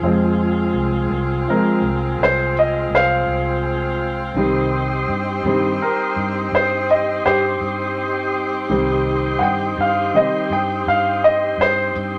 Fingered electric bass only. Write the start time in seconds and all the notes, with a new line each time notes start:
0.02 F2
0.74 C2
1.10 C2
1.81 C2
2.19 C2
2.90 C2
3.27 C2
4.34 C2
5.08 G2
5.44 G2
6.16 G2
6.52 G2
7.26 G2
7.60 G2
8.69 C2
9.41 G2
9.77 G2
10.50 G2
10.87 G2
11.58 G2
11.95 G2